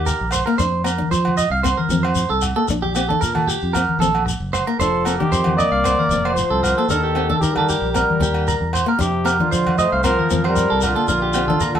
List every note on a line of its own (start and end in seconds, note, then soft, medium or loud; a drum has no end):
0.00 0.13 D#2 medium
0.00 0.28 D#3 medium
0.00 0.28 G4 medium
0.06 0.31 A#4 medium
0.06 low conga medium
0.06 shekere medium
0.21 0.42 A#1 medium
0.31 0.45 C5 medium
0.31 low conga medium
0.31 low agogo medium
0.31 shekere medium
0.46 0.56 A#3 medium
0.46 0.58 A#4 medium
0.58 1.02 F2 medium
0.58 0.79 D4 medium
0.58 0.83 C5 medium
0.58 shekere medium
0.84 0.95 C4 medium
0.84 1.10 A#4 medium
0.84 low agogo medium
0.84 shekere medium
0.98 1.18 D4 medium
0.98 high conga medium
1.11 1.44 F3 medium
1.11 1.36 C5 medium
1.11 shekere medium
1.25 high conga medium
1.25 low agogo medium
1.37 1.51 D#5 medium
1.37 low conga medium
1.37 shekere medium
1.50 1.73 C2 medium
1.50 1.63 F5 medium
1.63 1.83 C4 medium
1.63 1.77 C5 medium
1.63 low agogo medium
1.63 shekere medium
1.77 2.03 A#4 medium
1.77 high conga medium
1.89 2.23 F2 medium
1.89 2.10 C4 medium
1.89 high conga medium
1.89 low conga medium
1.89 shekere medium
2.03 2.29 C5 medium
2.03 low agogo medium
2.15 low conga medium
2.15 shekere loud
2.30 2.52 C2 medium
2.30 2.42 A4 medium
2.42 low conga medium
2.42 low agogo medium
2.42 shekere medium
2.56 2.65 A#3 medium
2.56 2.68 A4 medium
2.68 3.12 A#1 medium
2.68 2.89 D4 medium
2.68 muted clean electric guitar stroke medium
2.68 shekere loud
2.82 2.94 G4 medium
2.82 high conga soft
2.95 3.06 C4 medium
2.95 3.08 G4 medium
2.95 low agogo medium
2.95 shekere medium
3.09 3.29 D4 medium
3.09 3.21 A4 medium
3.09 high conga medium
3.21 3.56 A#2 medium
3.21 3.34 A#4 medium
3.21 shekere medium
3.35 3.47 A4 medium
3.35 high conga medium
3.35 low agogo medium
3.47 3.73 G4 medium
3.47 low conga medium
3.47 shekere medium
3.63 3.84 F2 medium
3.73 3.95 C4 medium
3.73 3.99 A#4 medium
3.73 low agogo medium
3.73 shekere medium
3.89 high conga medium
3.99 4.33 A#1 medium
3.99 4.21 C4 medium
3.99 4.25 A4 medium
3.99 high conga medium
3.99 shekere medium
4.15 low agogo medium
4.26 muted clean electric guitar stroke medium
4.26 low conga medium
4.26 shekere medium
4.40 4.62 F#1 medium
4.53 4.66 C5 medium
4.53 low conga medium
4.53 low agogo medium
4.53 shekere medium
4.67 4.76 A#3 medium
4.67 4.79 A#4 medium
4.79 5.23 F1 medium
4.79 5.17 F3 medium
4.79 5.00 D4 medium
4.79 5.17 A4 medium
4.79 5.05 C5 medium
4.79 shekere medium
5.05 5.16 C4 medium
5.05 5.31 A#4 medium
5.05 low agogo medium
5.05 shekere medium
5.19 5.55 D#3 medium
5.19 5.39 D4 medium
5.19 5.55 G4 medium
5.19 high conga medium
5.31 5.65 F2 medium
5.31 5.57 C5 medium
5.31 shekere medium
5.44 high conga medium
5.44 low agogo medium
5.56 6.36 A#3 medium
5.56 6.36 D5 loud
5.56 5.71 D#5 medium
5.56 low conga medium
5.56 shekere medium
5.72 5.94 C2 medium
5.72 5.84 F5 medium
5.84 6.05 C4 medium
5.84 5.98 C5 medium
5.84 low agogo medium
5.84 shekere medium
5.99 6.24 A#4 medium
5.99 high conga medium
6.09 6.43 F1 medium
6.09 6.31 C4 medium
6.09 low conga medium
6.09 shekere medium
6.25 6.50 C5 medium
6.25 low agogo medium
6.34 6.87 F3 medium
6.34 6.88 C5 medium
6.34 low conga medium
6.34 shekere medium
6.50 6.73 C2 medium
6.50 6.63 A4 medium
6.63 6.77 A#4 medium
6.63 low conga medium
6.63 low agogo medium
6.63 shekere medium
6.78 6.87 A#3 medium
6.78 6.89 A4 medium
6.87 7.33 D#2 medium
6.87 7.37 D#3 medium
6.87 7.10 D4 medium
6.87 7.38 A4 medium
6.87 7.03 A#4 medium
6.87 shekere medium
7.03 7.15 G4 medium
7.15 7.26 C4 medium
7.15 7.29 G4 medium
7.15 low agogo medium
7.30 7.49 D4 medium
7.30 7.42 A4 medium
7.30 high conga medium
7.40 7.54 D#3 medium
7.40 7.75 D#3 medium
7.40 7.57 G4 medium
7.40 7.56 A#4 medium
7.40 shekere medium
7.52 7.93 G3 medium
7.52 7.91 A#4 medium
7.52 low agogo medium
7.57 7.69 A4 medium
7.57 high conga medium
7.69 7.94 G4 medium
7.69 low conga medium
7.69 shekere medium
7.82 8.04 A#1 medium
7.92 8.69 G3 medium
7.92 8.14 C4 medium
7.92 8.68 A#4 medium
7.92 low agogo medium
7.92 shekere medium
7.96 8.20 A#4 medium
8.10 high conga medium
8.20 8.54 D#2 medium
8.20 8.47 G4 medium
8.20 muted nylon-string guitar stroke medium
8.20 high conga medium
8.20 low conga medium
8.20 shekere medium
8.34 low agogo medium
8.48 8.73 A#4 medium
8.48 low conga medium
8.48 shekere medium
8.61 8.83 E2 medium
8.73 8.87 C5 medium
8.73 low conga medium
8.73 low agogo medium
8.73 shekere medium
8.86 8.96 A#3 medium
8.86 9.00 A#4 medium
8.99 9.43 F2 medium
8.99 9.38 C3 medium
8.99 9.18 D4 medium
8.99 9.37 G4 medium
8.99 muted clean electric guitar stroke medium
8.99 shekere medium
9.25 9.36 C4 medium
9.25 9.51 A#4 medium
9.25 low agogo medium
9.25 shekere medium
9.40 9.81 D3 medium
9.40 9.60 D4 medium
9.40 9.80 F4 medium
9.40 high conga medium
9.51 9.86 F3 medium
9.51 9.77 C5 medium
9.51 shekere medium
9.67 high conga medium
9.67 low agogo medium
9.78 10.05 A3 medium
9.78 10.03 C5 medium
9.78 9.92 D#5 medium
9.78 low conga medium
9.78 shekere medium
9.92 10.14 C2 medium
9.92 10.03 F5 medium
10.04 10.42 F3 medium
10.04 10.24 C4 medium
10.04 10.42 A#4 loud
10.04 10.17 C5 medium
10.04 low agogo medium
10.04 shekere medium
10.19 10.44 A#4 medium
10.19 high conga medium
10.30 10.64 F2 loud
10.30 10.50 C4 medium
10.30 high conga medium
10.30 low conga medium
10.30 shekere medium
10.44 10.87 G3 medium
10.44 10.88 A#4 medium
10.44 10.70 C5 medium
10.44 low agogo medium
10.56 low conga medium
10.56 shekere loud
10.70 10.93 C2 medium
10.70 10.82 A4 medium
10.81 10.95 A#4 medium
10.81 low conga medium
10.81 low agogo medium
10.81 shekere medium
10.86 11.80 D3 medium
10.86 11.80 F4 medium
10.96 11.06 A#3 medium
10.96 11.08 A4 medium
11.08 11.53 A#1 medium
11.08 11.29 D4 medium
11.08 11.22 A#4 medium
11.08 shekere medium
11.22 11.33 G4 medium
11.33 11.46 C4 medium
11.33 11.47 G4 medium
11.33 low agogo medium
11.33 shekere medium
11.48 11.69 D4 medium
11.48 11.60 A4 medium
11.48 high conga medium
11.60 11.80 A#2 medium
11.60 11.75 A#4 medium
11.60 shekere medium
11.74 11.80 A4 medium
11.74 high conga medium
11.74 low agogo medium